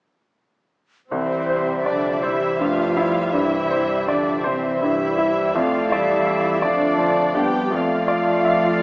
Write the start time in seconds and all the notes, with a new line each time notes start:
1.11 C2 C3 E3 G3 C4 C5 E5
1.49 C5
1.86 D3 F3 D4 D5
2.22 E3 G3 E4 C5 E5
2.60 G2 F3 A3 F4 F5
2.97 E4
3.33 G2 E3 G3 E4 C5 E5
3.71 C5
4.08 D3 F3 D4 D5
4.44 C3 E3 G3 C4 C5 E5
4.82 G2 E3 G3 E4 E5
5.18 E4
5.54 F2 F3 A3 F4 D5 F5
5.91 E3 G3 E4 D5 E5
6.27 E5
6.62 D3 F3 A3 D4 D5 F5
6.99 F3
7.34 G3 B3 D4 G4 G5
7.71 F2 F3 A3 F4 D5 F5
8.08 D5
8.45 E5